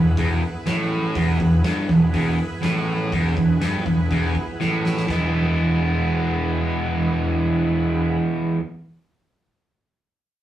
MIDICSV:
0, 0, Header, 1, 5, 480
1, 0, Start_track
1, 0, Key_signature, 4, "major"
1, 0, Tempo, 491803
1, 1125, Time_signature, 4, 2, 24, 8
1, 10172, End_track
2, 0, Start_track
2, 0, Title_t, "Tonewheel organ"
2, 0, Program_c, 0, 16
2, 0, Note_on_c, 0, 59, 68
2, 0, Note_on_c, 0, 64, 74
2, 0, Note_on_c, 0, 68, 72
2, 0, Note_on_c, 0, 71, 77
2, 1088, Note_off_c, 0, 68, 0
2, 1089, Note_off_c, 0, 64, 0
2, 1089, Note_off_c, 0, 71, 0
2, 1092, Note_off_c, 0, 59, 0
2, 1128, Note_on_c, 0, 59, 75
2, 1133, Note_on_c, 0, 71, 80
2, 1139, Note_on_c, 0, 64, 78
2, 1140, Note_on_c, 0, 68, 73
2, 4927, Note_off_c, 0, 59, 0
2, 4929, Note_off_c, 0, 71, 0
2, 4933, Note_off_c, 0, 64, 0
2, 4933, Note_off_c, 0, 68, 0
2, 4958, Note_on_c, 0, 59, 72
2, 4960, Note_on_c, 0, 68, 74
2, 4961, Note_on_c, 0, 64, 71
2, 4961, Note_on_c, 0, 71, 68
2, 7975, Note_off_c, 0, 59, 0
2, 7977, Note_off_c, 0, 68, 0
2, 7978, Note_off_c, 0, 71, 0
2, 7979, Note_off_c, 0, 64, 0
2, 10172, End_track
3, 0, Start_track
3, 0, Title_t, "Distorted electric guitar"
3, 0, Program_c, 1, 30
3, 0, Note_on_c, 1, 40, 77
3, 123, Note_off_c, 1, 40, 0
3, 179, Note_on_c, 1, 40, 114
3, 405, Note_off_c, 1, 40, 0
3, 648, Note_on_c, 1, 45, 104
3, 1120, Note_off_c, 1, 45, 0
3, 1130, Note_on_c, 1, 40, 116
3, 1361, Note_off_c, 1, 40, 0
3, 1371, Note_on_c, 1, 40, 79
3, 1560, Note_off_c, 1, 40, 0
3, 1608, Note_on_c, 1, 43, 115
3, 1839, Note_off_c, 1, 43, 0
3, 1849, Note_on_c, 1, 40, 78
3, 2039, Note_off_c, 1, 40, 0
3, 2087, Note_on_c, 1, 40, 112
3, 2319, Note_off_c, 1, 40, 0
3, 2560, Note_on_c, 1, 45, 101
3, 3035, Note_off_c, 1, 45, 0
3, 3048, Note_on_c, 1, 40, 101
3, 3272, Note_off_c, 1, 40, 0
3, 3283, Note_on_c, 1, 40, 73
3, 3476, Note_off_c, 1, 40, 0
3, 3527, Note_on_c, 1, 43, 105
3, 3758, Note_off_c, 1, 43, 0
3, 3770, Note_on_c, 1, 40, 76
3, 3959, Note_off_c, 1, 40, 0
3, 4013, Note_on_c, 1, 40, 110
3, 4241, Note_off_c, 1, 40, 0
3, 4490, Note_on_c, 1, 45, 105
3, 4946, Note_off_c, 1, 45, 0
3, 4949, Note_on_c, 1, 52, 94
3, 4968, Note_on_c, 1, 56, 91
3, 4979, Note_on_c, 1, 59, 104
3, 4990, Note_on_c, 1, 64, 118
3, 8365, Note_off_c, 1, 52, 0
3, 8384, Note_off_c, 1, 56, 0
3, 8395, Note_off_c, 1, 59, 0
3, 8406, Note_off_c, 1, 64, 0
3, 10172, End_track
4, 0, Start_track
4, 0, Title_t, "Picked electric bass"
4, 0, Program_c, 2, 34
4, 0, Note_on_c, 2, 28, 87
4, 153, Note_off_c, 2, 28, 0
4, 170, Note_on_c, 2, 28, 94
4, 391, Note_off_c, 2, 28, 0
4, 644, Note_on_c, 2, 33, 99
4, 1091, Note_off_c, 2, 33, 0
4, 1123, Note_on_c, 2, 28, 95
4, 1347, Note_off_c, 2, 28, 0
4, 1368, Note_on_c, 2, 28, 84
4, 1590, Note_off_c, 2, 28, 0
4, 1609, Note_on_c, 2, 31, 94
4, 1830, Note_off_c, 2, 31, 0
4, 1845, Note_on_c, 2, 28, 87
4, 2069, Note_off_c, 2, 28, 0
4, 2086, Note_on_c, 2, 28, 103
4, 2309, Note_off_c, 2, 28, 0
4, 2569, Note_on_c, 2, 33, 86
4, 3013, Note_off_c, 2, 33, 0
4, 3050, Note_on_c, 2, 28, 96
4, 3271, Note_off_c, 2, 28, 0
4, 3290, Note_on_c, 2, 28, 84
4, 3510, Note_off_c, 2, 28, 0
4, 3540, Note_on_c, 2, 31, 101
4, 3756, Note_off_c, 2, 31, 0
4, 3769, Note_on_c, 2, 28, 80
4, 3990, Note_off_c, 2, 28, 0
4, 4005, Note_on_c, 2, 28, 90
4, 4228, Note_off_c, 2, 28, 0
4, 4497, Note_on_c, 2, 33, 87
4, 4937, Note_off_c, 2, 33, 0
4, 4963, Note_on_c, 2, 28, 90
4, 7972, Note_off_c, 2, 28, 0
4, 10172, End_track
5, 0, Start_track
5, 0, Title_t, "Drums"
5, 165, Note_on_c, 9, 46, 60
5, 169, Note_on_c, 9, 36, 118
5, 263, Note_off_c, 9, 46, 0
5, 267, Note_off_c, 9, 36, 0
5, 645, Note_on_c, 9, 46, 63
5, 650, Note_on_c, 9, 38, 118
5, 743, Note_off_c, 9, 46, 0
5, 748, Note_off_c, 9, 38, 0
5, 1125, Note_on_c, 9, 46, 66
5, 1126, Note_on_c, 9, 36, 117
5, 1223, Note_off_c, 9, 46, 0
5, 1224, Note_off_c, 9, 36, 0
5, 1366, Note_on_c, 9, 36, 93
5, 1464, Note_off_c, 9, 36, 0
5, 1600, Note_on_c, 9, 46, 68
5, 1605, Note_on_c, 9, 38, 120
5, 1698, Note_off_c, 9, 46, 0
5, 1703, Note_off_c, 9, 38, 0
5, 1846, Note_on_c, 9, 36, 91
5, 1849, Note_on_c, 9, 38, 35
5, 1944, Note_off_c, 9, 36, 0
5, 1947, Note_off_c, 9, 38, 0
5, 2087, Note_on_c, 9, 36, 107
5, 2087, Note_on_c, 9, 46, 59
5, 2184, Note_off_c, 9, 46, 0
5, 2185, Note_off_c, 9, 36, 0
5, 2562, Note_on_c, 9, 46, 59
5, 2567, Note_on_c, 9, 38, 109
5, 2660, Note_off_c, 9, 46, 0
5, 2665, Note_off_c, 9, 38, 0
5, 3047, Note_on_c, 9, 46, 60
5, 3048, Note_on_c, 9, 36, 108
5, 3145, Note_off_c, 9, 36, 0
5, 3145, Note_off_c, 9, 46, 0
5, 3288, Note_on_c, 9, 36, 93
5, 3385, Note_off_c, 9, 36, 0
5, 3525, Note_on_c, 9, 46, 66
5, 3530, Note_on_c, 9, 38, 127
5, 3622, Note_off_c, 9, 46, 0
5, 3627, Note_off_c, 9, 38, 0
5, 3767, Note_on_c, 9, 36, 85
5, 3864, Note_off_c, 9, 36, 0
5, 4007, Note_on_c, 9, 46, 59
5, 4008, Note_on_c, 9, 36, 105
5, 4105, Note_off_c, 9, 46, 0
5, 4106, Note_off_c, 9, 36, 0
5, 4246, Note_on_c, 9, 36, 77
5, 4344, Note_off_c, 9, 36, 0
5, 4489, Note_on_c, 9, 38, 63
5, 4586, Note_off_c, 9, 38, 0
5, 4735, Note_on_c, 9, 38, 103
5, 4833, Note_off_c, 9, 38, 0
5, 4848, Note_on_c, 9, 38, 90
5, 4946, Note_off_c, 9, 38, 0
5, 4962, Note_on_c, 9, 36, 106
5, 4962, Note_on_c, 9, 38, 98
5, 5060, Note_off_c, 9, 36, 0
5, 5060, Note_off_c, 9, 38, 0
5, 10172, End_track
0, 0, End_of_file